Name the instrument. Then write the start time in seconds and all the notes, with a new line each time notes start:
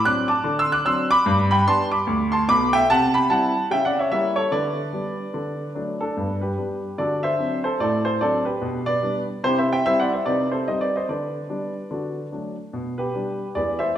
grand piano
0.05 F#3 C4 D4 D6 F#6
0.28 A5 D6
0.44 D3
0.59 C6 E6
0.72 D6 F#6
0.85 F#3 C4 D4 C6 E6
1.11 B5 D6
1.26 G2
1.51 G5 B5
1.67 G3 B3 D4 A5 C6
1.92 B5 D6
2.07 D2
2.32 A5 C6
2.48 B1 B2 B5 D6
2.73 E5 G5
2.90 C3 F#5 A5
3.14 G5 B5
3.30 G3 C4 E4 F#5 A5
3.71 C#3 E5 G5
3.85 D5 F#5
3.99 C#5 E5
4.11 G3 A#3 E4 C#5 E5
4.36 A4 C#5
4.52 D3 B4 D5
4.93 G3 B3 D4
5.34 D3
5.75 F#3 A3 D4
6.01 D4 A4
6.17 G2 B3
6.41 G4 B4
6.58 G3 B3 D4
6.98 D3 F#4 A4 D5
7.23 C5 E5
7.38 F#3 C4 D4
7.64 A4 C5
7.80 A2 A4 D5
8.05 A4 C5
8.20 F#3 C4 D4 A4 D5
8.45 G4 B4
8.62 B2
8.86 B4 D5
9.02 G3 B3 D4
9.44 C3 E4 G4 C5
9.58 C5 E5
9.73 E5 G5
9.86 G3 C4 E4 C5 E5
10.00 D5 F#5
10.13 C5 E5
10.26 C3 D#4 B4 D5
10.52 A4 C5
10.68 G3 C4 D#4 C5 D#5
10.81 B4 D5
10.96 C5 D#5
11.09 D3 B4 D5
11.49 G3 B3 D4
11.91 D3 F#4
12.32 F#3 A3 D4
12.73 B2
12.98 G4 B4
13.15 G3 B3 D4
13.55 E2 G#3 B4 D5
13.79 C5 E5